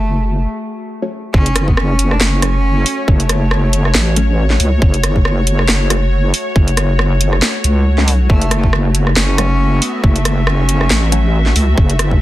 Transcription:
Already playing: F#1 A3 F#4 G#4
1.02 F#3 A3 C#4
1.34 F#1 A3 C#4 F#4 C#5, kick
1.46 closed hi-hat
1.56 cross-stick, closed hi-hat
1.68 B3, kick
1.77 C#4, cross-stick
1.99 closed hi-hat
2.11 D4, cross-stick
2.21 F#1 C#4, snare
2.42 F#3 A3 C#4, cross-stick, closed hi-hat
2.86 open hi-hat
3.08 F#1 A3, kick
3.20 closed hi-hat
3.29 cross-stick, closed hi-hat
3.51 cross-stick
3.73 closed hi-hat
3.85 cross-stick
3.95 A1, snare
4.16 F#3 A3 C#4, closed hi-hat
4.50 snare
4.60 C#2, open hi-hat
4.82 F#1, kick
4.94 closed hi-hat
5.03 cross-stick, closed hi-hat
5.16 kick
5.25 cross-stick
5.47 closed hi-hat
5.59 cross-stick
5.69 F#1, snare
5.90 F#3 A3 C#4, cross-stick, closed hi-hat
6.34 open hi-hat
6.56 F#1, kick
6.68 closed hi-hat
6.77 cross-stick, closed hi-hat
6.99 cross-stick
7.21 closed hi-hat
7.33 cross-stick
7.42 snare
7.64 C#2, closed hi-hat
7.98 F#3 A3 C#4, snare
8.08 C2, open hi-hat
8.29 F#1 A3 E5, kick
8.41 closed hi-hat
8.51 cross-stick, closed hi-hat
8.64 kick
8.73 cross-stick
8.95 closed hi-hat
9.07 cross-stick
9.17 F#1 C#4, snare
9.38 F#3 A3 C#4, cross-stick, closed hi-hat
9.82 B3, open hi-hat
10.03 F#1 A3, kick
10.16 closed hi-hat
10.25 cross-stick, closed hi-hat
10.47 C#4, cross-stick
10.69 closed hi-hat
10.81 cross-stick
10.90 A1, snare
11.12 F#3 A3 C#4, closed hi-hat
11.46 snare
11.56 C#2, open hi-hat
11.78 F#1, kick
11.89 closed hi-hat
11.99 cross-stick, closed hi-hat
12.11 kick

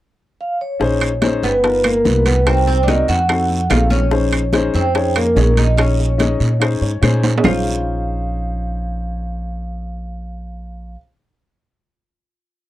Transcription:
0.41 F5
0.61 C#5
0.80 A#1 C#4 D#4 G#4 C5, high bongo, high conga, long guiro
1.01 high bongo, high conga, high timbale, claves
1.22 C#4 D#4 G#4 C5, high bongo, high conga, high timbale, short guiro
1.43 G1 B3 B4, high conga, short guiro
1.63 B3 D#4 F4 A#4, high bongo, high conga, high timbale, long guiro
1.84 A#3 A#4, high bongo, high conga, high timbale, claves
2.05 C2 B3 D#4 F4 B4, high bongo, low bongo, high conga, short guiro
2.26 B3 B4, high bongo, high conga, high timbale, short guiro
2.46 C4 D#4 F#4 A#4 C5, high bongo, high conga, high timbale, long guiro, claves
2.67 C4 C5, high bongo, high conga
2.83 D4 D5
2.87 C4 D#4 F#4 A#4 D#5, high bongo, high conga, high timbale, short guiro
3.08 F2 F#4 F#5, high conga, short guiro
3.28 C4 D#4 F#4 A4, high bongo, high conga, high timbale, long guiro, claves
3.50 high bongo, high conga
3.70 A#1 C4 D#4 F4 F#4 A4 F5, high bongo, low bongo, high conga, high timbale, low timbale, short guiro, claves
3.90 C#4 C#5, high bongo, high conga, short guiro
4.11 C#4 D#4 G#4 C5, high bongo, high conga, long guiro
4.32 high bongo, high conga, high timbale, claves
4.53 C#4 D#4 G#4 C5, high bongo, high conga, high timbale, short guiro
4.74 F2 C4 C5, high conga, short guiro
4.94 C#4 D#4 G#4 C#5, high bongo, high conga, high timbale, long guiro
5.16 A#3 A#4, high bongo, high conga, high timbale, claves
5.35 A#1 C#4 D#4 G#4 C#5, high bongo, low bongo, high conga, low timbale, short guiro
5.57 D#4 D#5, high bongo, high conga, high timbale, short guiro
5.77 C#4 D#4 G#4 C#5 D#5, high bongo, high timbale, long guiro, claves
6.00 high bongo, high conga
6.18 C#4 D#4 G#4 D#5, high bongo, high conga, high timbale, short guiro
6.40 A#2, high conga, short guiro
6.60 C#4 D#4 G#4 C5, high bongo, high conga, high timbale, long guiro, claves
6.81 G#2 C#5, high bongo, high conga
7.02 A#2 C#4 D#4 G#4 C5 G#5, high bongo, low bongo, high conga, high timbale, short guiro, claves
7.23 high bongo, high conga, high timbale, short guiro
7.38 C#4, low timbale
7.43 A#1 D#4 F4 G#4 F5, low bongo, low conga, low timbale, long guiro, claves
7.47 C5

